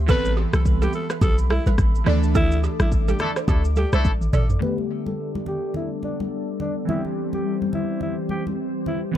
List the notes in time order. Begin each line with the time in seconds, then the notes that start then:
Already playing: D2
0.06 A1 E3 B3 C4 A4 B4 E5 B5, kick, low conga, shaker
0.11 A4
0.25 high conga, shaker
0.37 G4
0.53 C2 A4, cross-stick, high conga, shaker
0.65 kick, shaker
0.82 G4 A4, high conga, shaker
0.93 A4, shaker
1.10 B4, cross-stick, shaker
1.21 B1 G4 A4, kick, low conga, shaker
1.38 shaker
1.50 E4 A4, cross-stick, high conga
1.66 A1 B4, high conga, shaker
1.78 A1, kick, cross-stick, shaker
1.95 shaker
2.04 D2 E3 A3 D4 D5 D6, cross-stick, low conga
2.09 A4
2.23 shaker
2.35 E4 A4, kick, low conga, shaker
2.52 shaker
2.64 G4, shaker
2.80 A1 E4, cross-stick, high conga, shaker
2.92 kick, shaker
3.08 G4 A4, high conga, shaker
3.19 A3 D4 E4 A4, cross-stick, low conga, shaker
3.36 C5, cross-stick, shaker
3.48 D2 A3 D4 E4 G4 A4, kick, low conga, shaker
3.65 shaker
3.76 G4 A4, high conga, shaker
3.93 C2 A3 D4 E4 A4 C5, cross-stick, high conga, shaker
4.05 A1, kick, high tom, shaker
4.21 mid tom, shaker
4.33 A1 A4 D5, mid tom, low conga, shaker
4.49 floor tom, shaker
4.59 D3 G3 A3 B3 D4 A4 B4 D5, low conga
4.64 G4
4.78 high conga
5.06 A4, high conga
5.35 high conga
5.46 G4, low conga
5.74 E4, low conga
6.03 D4, high conga
6.20 high conga
6.60 D4, low conga
6.85 E3 G3 C4 E4 G4 C5, low conga
6.90 G4
7.05 high conga
7.33 G4, high conga
7.62 high conga
7.73 E4, low conga
8.01 E4, low conga
8.29 G4, high conga
8.47 high conga
8.86 E4, low conga
9.12 E3 B3